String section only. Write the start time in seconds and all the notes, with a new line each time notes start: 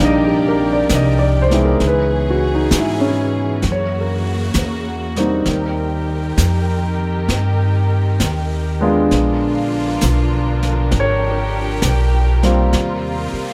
Already playing: C3 F3 G4 A#4 D5
1.78 E3 B3 C#4 G#4
3.63 C#3 A#3 F#4
5.45 C3 D#3 G4 A#4
9.10 D3 F3 D4 F4 A#4
10.93 G4
12.74 C3 C4 F4 G4